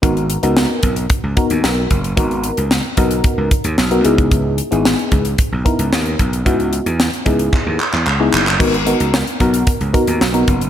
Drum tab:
CC |----------------|----------------|----------------|----------------|
HH |xxxx--xxx-xx--xx|xxxx--xxx-xx-xxx|x-xx-xxxx-xx-xxx|xxxx-xxx--------|
CP |----------------|----------------|----------------|--------x-xxx-xx|
SD |----o-------o---|----o-------o---|----o-------o---|----o-----------|
BD |o-----o-o-o---o-|o-----o-o-o----o|o-----o-o-o---o-|o-----o-o-------|

CC |x---------------|
HH |-xxx-xxxxxxx-xxx|
CP |----------------|
SD |----o-------o---|
BD |o-----o-o-o---o-|